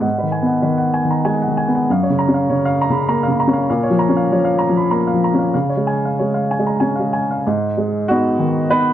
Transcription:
0.00 1.82 G#2 soft
0.00 0.27 F#5 soft
0.18 0.43 B4 soft
0.23 0.57 D#3 soft
0.32 0.58 G#5 soft
0.42 0.76 B3 soft
0.46 0.73 F#5 soft
0.62 0.97 D#3 soft
0.62 0.88 B4 soft
0.78 1.04 F#5 soft
0.94 1.19 G#5 soft
1.05 1.38 D#3 soft
1.11 1.26 A#5 soft
1.25 1.58 G#3 soft
1.25 1.50 G#5 soft
1.42 1.66 F#5 soft
1.47 1.80 D#3 soft
1.57 1.82 G#5 soft
1.68 1.88 B3 soft
1.75 1.89 F#5 soft
1.90 3.66 F#2 soft
1.90 2.14 F5 soft
2.03 2.27 C#5 soft
2.10 2.41 C#3 soft
2.19 2.42 A#5 soft
2.28 2.60 C#4 soft
2.34 2.58 F5 soft
2.50 2.81 C#3 soft
2.50 2.73 C#5 soft
2.65 2.88 F5 soft
2.81 3.04 A#5 soft
2.90 3.21 C#3 soft
2.90 3.08 B5 soft
3.08 3.40 A#3 soft
3.08 3.33 A#5 soft
3.23 3.47 F5 soft
3.28 3.60 C#3 soft
3.40 3.63 A#5 soft
3.48 3.68 C#4 soft
3.53 3.68 F5 soft
3.70 5.50 A#2 medium
3.70 3.93 F5 soft
3.83 4.07 C#5 soft
3.90 4.21 F3 soft
3.99 4.23 A#5 soft
4.09 4.41 C#4 soft
4.17 4.39 F5 soft
4.32 4.63 F3 soft
4.32 4.55 C#5 soft
4.45 4.69 F5 soft
4.59 4.84 A#5 soft
4.69 5.03 F3 soft
4.77 4.91 B5 soft
4.91 5.24 A#3 soft
4.91 5.16 A#5 soft
5.07 5.32 F5 soft
5.14 5.46 F3 soft
5.24 5.48 A#5 soft
5.34 5.54 C#4 soft
5.39 5.52 F5 soft
5.54 7.41 C#3 soft
5.54 5.79 F5 soft
5.69 5.95 C#5 soft
5.77 6.10 G#3 soft
5.87 6.12 G#5 soft
6.05 6.29 F5 soft
6.19 6.52 G#3 soft
6.19 6.43 C#5 soft
6.34 6.59 F5 soft
6.51 6.75 G#5 soft
6.59 6.93 G#3 soft
6.67 6.81 A#5 soft
6.80 7.15 C#4 soft
6.80 7.06 G#5 soft
6.96 7.22 F5 soft
7.00 7.35 G#3 soft
7.13 7.38 G#5 soft
7.31 7.45 F5 soft
7.47 8.93 G#2 soft
7.77 8.27 G#3 soft
8.08 8.37 B3 soft
8.08 8.37 D#4 soft
8.08 8.71 F#4 medium
8.39 8.89 D#3 soft
8.70 8.93 B3 soft
8.70 8.93 D#4 soft
8.70 8.93 B4 medium

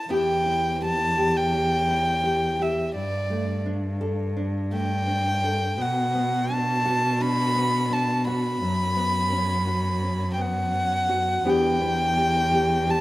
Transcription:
0.09 2.95 E2 medium
0.09 2.94 E3 medium
0.09 3.30 B3 medium
0.09 0.45 E4 medium
0.09 0.81 G4 medium
0.13 0.79 G5 medium
0.46 1.87 E4 soft
0.81 1.17 G4 medium
0.81 1.39 A5 medium
1.18 1.53 G4 medium
1.37 2.63 G5 medium
1.53 2.22 G4 medium
1.88 2.90 E4 soft
2.24 2.58 G4 medium
2.59 2.90 G4 medium
2.59 2.95 E5 medium
2.93 5.80 G2 medium
2.93 5.73 G2 medium
2.93 3.62 D5 medium
3.30 4.70 A3 medium
3.66 4.36 D4 medium
4.01 5.43 A4 medium
4.37 5.06 D4 medium
4.71 5.78 A3 soft
4.71 5.83 G5 medium
5.07 5.74 D4 soft
5.44 5.75 A4 medium
5.77 8.61 B2 medium
5.77 8.63 B2 medium
5.77 6.54 F#5 medium
6.14 7.55 B3 medium
6.49 7.19 D4 medium
6.49 7.23 A5 medium
6.85 8.26 F#4 medium
7.21 7.89 D4 medium
7.21 7.95 B5 loud
7.55 8.96 B3 soft
7.90 8.57 D4 medium
7.90 8.28 A5 medium
8.27 9.66 F#4 medium
8.27 10.29 B5 medium
8.61 11.41 F#2 medium
8.61 11.46 F#2 medium
8.96 10.37 B3 medium
9.32 10.01 C#4 medium
9.67 11.08 F#4 medium
10.02 10.72 C#4 medium
10.33 10.42 G5 medium
10.38 11.41 B3 medium
10.38 11.51 F#5 medium
10.73 11.45 C#4 medium
11.09 11.45 F#4 medium
11.45 13.01 E2 medium
11.45 13.01 E3 medium
11.45 11.80 B3 medium
11.45 13.01 D4 medium
11.45 12.16 G4 medium
11.50 12.92 G5 medium
11.81 13.01 B3 medium
12.17 12.50 G4 medium
12.52 12.86 G4 medium
12.87 13.01 G4 medium
12.87 13.01 A5 medium

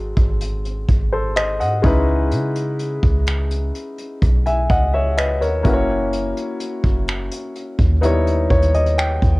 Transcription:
0.00 0.13 G#1 loud
0.00 1.79 G#3 medium
0.00 1.79 C4 medium
0.00 1.80 D#4 medium
0.00 1.80 F#4 medium
0.00 0.86 A4 medium
0.17 0.86 G#1 loud
0.17 kick medium
0.17 closed hi-hat soft
0.41 closed hi-hat medium
0.65 closed hi-hat medium
0.88 1.62 G#1 loud
0.88 kick medium
0.88 closed hi-hat medium
1.12 1.35 A4 medium
1.12 1.35 C5 medium
1.36 1.59 C5 medium
1.36 1.59 D#5 medium
1.36 finger snap loud
1.36 closed hi-hat medium
1.60 1.83 G#2 medium
1.60 2.06 D#5 medium
1.60 2.05 F#5 medium
1.60 closed hi-hat medium
1.82 2.33 C#2 loud
1.82 5.60 G#3 medium
1.82 5.60 C#4 medium
1.82 5.61 D#4 medium
1.82 5.61 E4 medium
1.82 4.19 B4 medium
1.82 kick loud
1.82 closed hi-hat medium
2.31 2.99 C#3 loud
2.31 closed hi-hat medium
2.55 closed hi-hat medium
2.79 closed hi-hat medium
3.03 3.72 C#2 loud
3.03 kick medium
3.03 closed hi-hat soft
3.26 finger snap loud
3.26 closed hi-hat medium
3.51 closed hi-hat medium
3.75 closed hi-hat medium
3.98 closed hi-hat medium
4.22 4.68 B1 loud
4.22 kick medium
4.22 closed hi-hat medium
4.46 4.69 E5 medium
4.46 4.68 G#5 medium
4.46 closed hi-hat medium
4.69 5.43 C#2 medium
4.69 4.93 D#5 medium
4.69 4.92 F#5 medium
4.69 kick medium
4.69 closed hi-hat medium
4.93 5.16 C#5 medium
4.93 5.16 E5 medium
5.17 5.40 B4 medium
5.17 5.40 D#5 medium
5.17 finger snap loud
5.17 closed hi-hat medium
5.41 5.64 D#2 loud
5.41 5.87 A#4 medium
5.41 5.72 C#5 medium
5.41 closed hi-hat medium
5.63 6.33 F#1 loud
5.63 7.98 A#3 medium
5.63 7.99 C#4 medium
5.63 7.99 E4 medium
5.63 7.99 F#4 medium
5.63 5.72 B4 medium
5.63 kick loud
5.63 closed hi-hat medium
5.73 8.03 C#5 medium
6.13 closed hi-hat medium
6.37 closed hi-hat medium
6.60 closed hi-hat medium
6.84 7.30 F#1 loud
6.84 kick medium
6.84 closed hi-hat soft
7.08 finger snap loud
7.08 closed hi-hat medium
7.31 closed hi-hat medium
7.56 closed hi-hat medium
7.79 8.48 D#2 loud
7.79 kick medium
7.79 closed hi-hat medium
8.01 9.40 G3 medium
8.01 9.40 B3 medium
8.01 9.40 D#4 medium
8.01 9.40 E4 medium
8.01 8.49 C#5 medium
8.01 closed hi-hat medium
8.27 closed hi-hat soft
8.50 9.19 D#2 medium
8.50 8.73 C#5 medium
8.50 kick medium
8.50 closed hi-hat soft
8.62 closed hi-hat soft
8.74 8.97 D#5 medium
8.74 closed hi-hat medium
8.86 closed hi-hat medium
8.98 9.40 G5 medium
8.98 finger snap loud
8.98 closed hi-hat medium
9.22 9.40 D#2 loud
9.22 kick medium
9.22 closed hi-hat medium

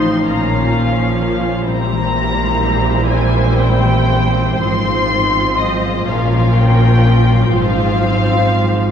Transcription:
0.00 0.31 A2 soft
0.00 0.31 D#3 soft
0.00 1.63 F3 soft
0.00 1.71 F3 soft
0.00 0.25 D#4 soft
0.00 0.31 D#4 soft
0.00 0.97 F4 soft
0.00 0.27 C5 soft
0.00 0.24 C6 medium
0.05 0.28 C4 soft
0.26 1.44 A#1 medium
0.26 1.44 A#2 medium
0.26 1.67 A#2 soft
0.26 0.49 A#3 soft
0.26 1.68 C#4 soft
0.26 1.64 F5 soft
0.26 0.73 A#5 medium
0.50 1.44 A#3 soft
0.50 0.74 C#4 soft
0.73 1.20 C#4 soft
0.73 0.97 F4 soft
0.96 1.20 C#4 soft
0.96 1.72 F4 soft
1.18 1.43 A#3 soft
1.18 1.71 C#4 soft
1.43 4.66 A#3 soft
1.43 1.67 C#4 soft
1.66 4.57 A#1 medium
1.66 4.57 A#2 medium
1.66 4.66 A#2 soft
1.66 4.58 G3 medium
1.66 6.05 C4 medium
1.66 4.56 E4 soft
1.66 6.03 C5 soft
1.66 3.04 A#5 medium
1.92 2.85 E3 soft
2.15 2.60 C4 soft
2.38 3.32 E4 soft
2.62 3.08 C4 soft
2.86 3.83 E3 soft
3.08 3.58 C4 soft
3.08 3.58 G#5 medium
3.34 4.35 E4 soft
3.58 4.09 C4 soft
3.58 4.61 G5 medium
3.84 4.66 E3 soft
4.10 5.11 C4 soft
4.36 4.65 E4 soft
4.61 6.08 G#1 medium
4.61 6.08 G#2 medium
4.61 6.12 G#2 soft
4.61 8.91 F3 medium
4.61 8.91 F4 medium
4.61 5.58 C6 medium
4.87 5.83 G#3 soft
5.12 5.59 C4 soft
5.36 6.80 F4 soft
5.60 6.12 C4 soft
5.60 6.08 D#5 medium
5.84 6.12 G#3 soft
6.07 7.51 A#1 medium
6.07 7.58 A#2 medium
6.07 7.51 A#2 medium
6.07 7.50 C#4 medium
6.07 7.50 A#4 medium
6.07 6.56 F5 medium
6.32 7.29 A#3 soft
6.57 7.04 C#4 soft
6.57 7.54 G5 medium
6.81 8.27 F4 soft
7.06 7.58 C#4 soft
7.30 7.58 A#3 soft
7.53 8.91 G#1 medium
7.53 8.91 G#2 medium
7.53 8.91 C4 medium
7.53 8.91 C5 soft
7.53 8.91 F5 medium
7.80 8.77 G#3 soft
8.04 8.52 C4 soft
8.29 8.91 F4 soft
8.53 8.91 C4 soft
8.78 8.91 G#3 soft

